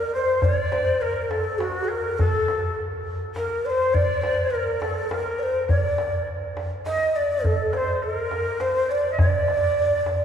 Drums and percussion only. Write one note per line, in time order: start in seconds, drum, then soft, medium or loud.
0.42 tombak dum medium
0.72 tombak tek medium
1.31 tombak tek medium
1.60 tombak tek medium
2.19 tombak dum medium
2.48 tombak tek medium
3.36 tombak tek medium
3.94 tombak dum medium
4.23 tombak tek medium
4.82 tombak tek medium
5.11 tombak tek medium
5.69 tombak dum medium
5.98 tombak tek medium
6.28 tombak ka soft
6.57 tombak tek medium
6.86 tombak tek medium
7.44 tombak dum medium
7.73 tombak tek medium
8.31 tombak tek medium
8.60 tombak tek medium
9.19 tombak dum loud
9.48 tombak tek medium
10.06 tombak tek medium